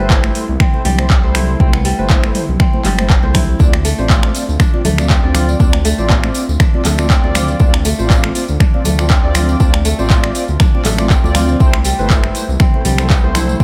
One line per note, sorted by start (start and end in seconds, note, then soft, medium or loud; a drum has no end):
0.00 0.31 G1 medium
0.00 0.84 G3 loud
0.00 0.32 A3 loud
0.00 0.66 B3 medium
0.00 0.32 E4 medium
0.00 0.66 B4 medium
0.00 0.32 C5 loud
0.09 1.35 E4 medium
0.09 kick loud
0.09 clap loud
0.09 muted conga medium
0.09 high conga loud
0.24 finger snap medium
0.35 0.44 A3 medium
0.35 0.44 E4 medium
0.35 0.44 C5 medium
0.35 open hi-hat medium
0.35 high conga medium
0.48 0.57 C2 medium
0.48 muted conga soft
0.60 1.59 C4 medium
0.60 finger snap medium
0.60 kick loud
0.60 mid tom loud
0.74 0.81 A3 medium
0.74 0.81 E4 medium
0.74 0.81 C5 loud
0.74 muted conga medium
0.85 1.19 C2 medium
0.85 1.84 G3 loud
0.85 mid tom medium
0.85 open hi-hat medium
0.85 low conga medium
0.98 1.06 A3 medium
0.98 1.06 E4 medium
0.98 1.06 C5 loud
0.98 finger snap medium
0.98 muted conga soft
1.10 kick loud
1.10 clap loud
1.23 1.56 C2 medium
1.23 1.57 A3 loud
1.23 1.57 E4 medium
1.23 1.57 C5 loud
1.23 1.79 C5 medium
1.35 2.10 E4 medium
1.35 finger snap medium
1.35 open hi-hat medium
1.35 muted conga medium
1.35 low conga medium
1.60 1.94 C2 loud
1.60 1.75 A3 loud
1.60 1.79 C4 medium
1.60 1.75 E4 medium
1.60 1.75 C5 loud
1.60 kick loud
1.60 muted conga medium
1.60 high conga loud
1.73 2.66 B3 medium
1.73 finger snap medium
1.85 2.84 G3 loud
1.85 open hi-hat loud
1.85 muted conga soft
1.98 2.31 G1 medium
1.98 2.32 A3 loud
1.98 2.32 E4 medium
1.98 2.66 B4 medium
1.98 2.32 C5 loud
1.98 high conga medium
2.09 3.35 E4 medium
2.09 kick loud
2.09 clap loud
2.09 muted conga medium
2.09 high conga loud
2.24 finger snap medium
2.35 2.44 A3 medium
2.35 2.44 E4 medium
2.35 2.44 C5 medium
2.35 mid tom medium
2.35 open hi-hat medium
2.35 high conga medium
2.48 2.57 C2 medium
2.48 muted conga soft
2.48 low conga medium
2.60 4.40 C4 medium
2.60 finger snap medium
2.60 kick loud
2.60 mid tom medium
2.73 2.81 A3 loud
2.73 2.81 E4 medium
2.73 2.81 C5 loud
2.73 muted conga medium
2.84 3.18 G1 loud
2.84 3.65 G3 loud
2.84 clap medium
2.84 open hi-hat medium
2.84 high conga loud
2.84 low conga loud
2.98 3.06 A3 medium
2.98 3.06 E4 medium
2.98 3.06 C5 medium
2.98 finger snap medium
2.98 muted conga soft
3.10 kick loud
3.10 clap loud
3.23 3.56 C2 loud
3.23 3.57 A3 medium
3.23 3.57 E4 medium
3.23 3.57 C5 loud
3.23 3.98 C5 medium
3.23 high conga medium
3.34 4.16 E4 medium
3.34 finger snap medium
3.34 kick medium
3.34 mid tom medium
3.34 open hi-hat medium
3.34 muted conga medium
3.34 low conga loud
3.59 3.94 D2 loud
3.59 3.75 C4 loud
3.59 4.60 D4 medium
3.59 3.75 F4 medium
3.59 3.75 D5 loud
3.59 kick loud
3.59 tambourine medium
3.59 muted conga medium
3.59 high conga loud
3.73 finger snap medium
3.85 4.84 A3 loud
3.85 open hi-hat loud
3.85 tambourine medium
3.85 muted conga soft
3.98 4.31 A1 medium
3.98 4.32 C4 loud
3.98 4.32 F4 medium
3.98 5.17 C5 medium
3.98 4.32 D5 loud
3.98 tambourine soft
4.10 5.35 F4 medium
4.10 kick loud
4.10 clap loud
4.10 tambourine medium
4.10 muted conga medium
4.10 high conga loud
4.23 finger snap medium
4.35 4.44 C4 medium
4.35 4.44 F4 medium
4.35 4.44 D5 medium
4.35 open hi-hat medium
4.35 tambourine medium
4.35 high conga medium
4.49 4.57 D2 medium
4.49 tambourine soft
4.49 muted conga soft
4.60 5.59 D4 medium
4.60 finger snap medium
4.60 kick loud
4.60 mid tom medium
4.60 tambourine medium
4.73 4.81 C4 loud
4.73 4.81 F4 medium
4.73 4.81 D5 loud
4.73 muted conga medium
4.85 5.19 D2 medium
4.85 5.85 A3 loud
4.85 mid tom medium
4.85 open hi-hat medium
4.85 tambourine loud
4.85 low conga medium
4.98 5.06 C4 medium
4.98 5.06 F4 medium
4.98 5.06 D5 loud
4.98 finger snap medium
4.98 tambourine soft
4.98 muted conga soft
5.10 6.90 C4 medium
5.10 kick loud
5.10 clap loud
5.10 tambourine soft
5.23 5.56 D2 medium
5.23 5.57 C4 medium
5.23 5.57 F4 medium
5.23 5.57 D5 loud
5.23 6.34 D5 medium
5.35 6.09 F4 medium
5.35 finger snap loud
5.35 open hi-hat medium
5.35 tambourine medium
5.35 muted conga medium
5.35 low conga loud
5.49 tambourine soft
5.59 5.94 D2 loud
5.59 5.75 C4 loud
5.59 6.59 D4 medium
5.59 5.75 F4 medium
5.59 5.75 D5 loud
5.59 kick loud
5.59 tambourine medium
5.59 muted conga medium
5.59 high conga loud
5.73 finger snap loud
5.85 6.84 A3 loud
5.85 open hi-hat medium
5.85 tambourine loud
5.85 muted conga soft
5.98 6.31 A1 medium
5.98 6.32 C4 medium
5.98 6.32 F4 medium
5.98 7.17 C5 medium
5.98 6.32 D5 loud
5.98 tambourine soft
6.10 7.35 F4 medium
6.10 kick loud
6.10 clap loud
6.10 tambourine medium
6.10 muted conga medium
6.10 high conga loud
6.24 finger snap medium
6.34 6.44 C4 medium
6.34 6.44 F4 medium
6.34 6.44 D5 medium
6.34 open hi-hat medium
6.34 tambourine medium
6.49 6.57 D2 medium
6.49 tambourine soft
6.49 muted conga soft
6.60 7.60 D4 medium
6.60 finger snap loud
6.60 kick loud
6.60 mid tom medium
6.60 tambourine medium
6.73 6.81 C4 medium
6.73 6.81 F4 medium
6.73 6.81 D5 loud
6.73 muted conga medium
6.85 7.19 D2 medium
6.85 7.85 A3 loud
6.85 clap medium
6.85 open hi-hat loud
6.85 tambourine loud
6.85 high conga loud
6.85 low conga loud
6.98 7.06 C4 medium
6.98 7.06 F4 medium
6.98 7.06 D5 loud
6.98 finger snap medium
6.98 tambourine soft
6.98 muted conga soft
7.10 8.90 C4 medium
7.10 kick loud
7.10 clap loud
7.10 tambourine medium
7.23 7.56 D2 medium
7.23 7.57 C4 medium
7.23 7.57 F4 medium
7.23 7.57 D5 loud
7.23 8.35 D5 medium
7.23 high conga loud
7.35 8.09 F4 medium
7.35 finger snap loud
7.35 mid tom medium
7.35 open hi-hat medium
7.35 tambourine medium
7.35 muted conga medium
7.35 low conga medium
7.48 tambourine soft
7.59 7.94 D2 loud
7.59 7.75 C4 medium
7.59 8.59 D4 medium
7.59 7.75 F4 medium
7.59 7.75 D5 loud
7.59 kick loud
7.59 tambourine soft
7.59 muted conga medium
7.59 high conga loud
7.74 finger snap loud
7.85 8.85 A3 loud
7.85 open hi-hat loud
7.85 tambourine loud
7.85 muted conga soft
7.98 8.31 A1 medium
7.98 8.32 C4 loud
7.98 8.32 F4 medium
7.98 9.17 C5 medium
7.98 8.32 D5 loud
7.98 tambourine soft
8.10 9.35 F4 medium
8.10 kick loud
8.10 clap loud
8.10 tambourine medium
8.10 muted conga medium
8.10 high conga loud
8.24 finger snap medium
8.35 8.44 C4 medium
8.35 8.44 F4 medium
8.35 8.44 D5 loud
8.35 open hi-hat medium
8.35 tambourine medium
8.35 high conga medium
8.48 8.58 D2 medium
8.48 tambourine soft
8.48 muted conga soft
8.60 9.60 D4 medium
8.60 finger snap loud
8.60 kick loud
8.60 mid tom medium
8.60 tambourine medium
8.74 8.81 C4 loud
8.74 8.81 F4 medium
8.74 8.81 D5 loud
8.74 muted conga medium
8.84 9.19 D2 medium
8.84 9.85 A3 loud
8.84 mid tom medium
8.84 open hi-hat medium
8.84 tambourine loud
8.84 low conga loud
8.99 9.06 C4 medium
8.99 9.06 F4 medium
8.99 9.06 D5 loud
8.99 finger snap medium
8.99 tambourine soft
8.99 muted conga soft
9.09 10.90 C4 medium
9.09 kick loud
9.09 clap loud
9.09 tambourine medium
9.24 9.56 D2 medium
9.24 9.57 C4 medium
9.24 9.57 F4 medium
9.24 9.57 D5 loud
9.24 10.34 D5 medium
9.35 10.10 F4 medium
9.35 finger snap loud
9.35 open hi-hat medium
9.35 tambourine medium
9.35 muted conga soft
9.35 low conga loud
9.49 tambourine soft
9.60 9.94 D2 loud
9.60 9.75 C4 loud
9.60 10.60 D4 medium
9.60 9.75 F4 medium
9.60 9.75 D5 loud
9.60 kick loud
9.60 tambourine medium
9.60 muted conga soft
9.60 high conga loud
9.74 finger snap loud
9.85 10.85 A3 loud
9.85 open hi-hat medium
9.85 tambourine loud
9.85 muted conga soft
9.99 10.31 A1 medium
9.99 10.32 C4 loud
9.99 10.32 F4 medium
9.99 11.17 C5 medium
9.99 10.32 D5 loud
9.99 tambourine soft
10.10 11.35 F4 medium
10.10 kick loud
10.10 clap loud
10.10 tambourine medium
10.10 muted conga medium
10.10 high conga loud
10.24 finger snap medium
10.35 10.44 C4 medium
10.35 10.44 F4 medium
10.35 10.44 D5 medium
10.35 open hi-hat medium
10.35 tambourine loud
10.48 10.57 D2 medium
10.48 tambourine soft
10.48 muted conga soft
10.60 12.28 D4 medium
10.60 finger snap medium
10.60 kick loud
10.60 mid tom medium
10.60 tambourine soft
10.74 10.82 C4 medium
10.74 10.82 F4 medium
10.74 10.82 D5 loud
10.74 muted conga medium
10.85 11.19 A1 medium
10.85 12.85 A3 loud
10.85 clap medium
10.85 open hi-hat medium
10.85 tambourine medium
10.85 high conga loud
10.85 low conga medium
10.98 11.06 C4 medium
10.98 11.06 F4 medium
10.98 11.06 D5 loud
10.98 finger snap medium
10.98 tambourine soft
10.98 muted conga soft
11.10 11.60 C4 medium
11.10 kick loud
11.10 clap medium
11.10 tambourine medium
11.24 11.56 D2 medium
11.24 11.57 C4 medium
11.24 11.57 F4 medium
11.24 11.57 D5 loud
11.24 12.35 D5 medium
11.24 tambourine soft
11.24 high conga loud
11.35 12.17 F4 medium
11.35 finger snap loud
11.35 mid tom medium
11.35 open hi-hat medium
11.35 tambourine loud
11.35 muted conga soft
11.35 low conga medium
11.48 tambourine soft
11.60 11.94 C2 loud
11.60 11.75 A3 loud
11.60 12.05 C4 medium
11.60 11.75 E4 medium
11.60 11.75 C5 loud
11.60 kick loud
11.60 tambourine soft
11.60 muted conga soft
11.60 high conga loud
11.73 finger snap loud
11.84 12.84 G3 loud
11.84 open hi-hat medium
11.84 tambourine loud
11.84 muted conga soft
11.99 12.31 G1 medium
11.99 12.32 A3 medium
11.99 12.32 E4 medium
11.99 12.66 B4 medium
11.99 12.32 C5 loud
11.99 tambourine soft
12.10 13.35 E4 medium
12.10 kick loud
12.10 clap loud
12.10 tambourine medium
12.10 muted conga medium
12.10 high conga medium
12.24 finger snap medium
12.35 12.45 A3 medium
12.35 12.45 E4 medium
12.35 12.45 C5 medium
12.35 open hi-hat medium
12.35 tambourine loud
12.35 high conga medium
12.48 12.57 C2 medium
12.48 tambourine soft
12.48 muted conga soft
12.60 13.16 C4 medium
12.60 finger snap medium
12.60 kick loud
12.60 mid tom medium
12.60 tambourine medium
12.74 12.82 A3 loud
12.74 12.82 E4 medium
12.74 12.82 C5 loud
12.74 muted conga medium
12.85 13.19 C2 medium
12.85 13.64 G3 loud
12.85 mid tom medium
12.85 open hi-hat medium
12.85 tambourine medium
12.85 low conga loud
12.98 13.07 A3 medium
12.98 13.07 E4 medium
12.98 13.07 C5 loud
12.98 finger snap medium
12.98 tambourine soft
12.98 muted conga soft
13.10 13.30 B3 medium
13.10 kick loud
13.10 clap loud
13.10 tambourine medium
13.23 13.56 C2 medium
13.23 13.57 A3 medium
13.23 13.57 E4 medium
13.23 13.64 C5 medium
13.23 13.57 C5 loud
13.35 13.64 E4 medium
13.35 finger snap loud
13.35 open hi-hat medium
13.35 tambourine medium
13.35 muted conga soft
13.35 low conga medium
13.49 tambourine soft
13.60 13.64 C2 loud
13.60 13.64 A3 medium
13.60 13.64 C4 medium
13.60 13.64 E4 medium
13.60 13.64 C5 loud
13.60 kick loud
13.60 tambourine soft
13.60 muted conga medium
13.60 high conga loud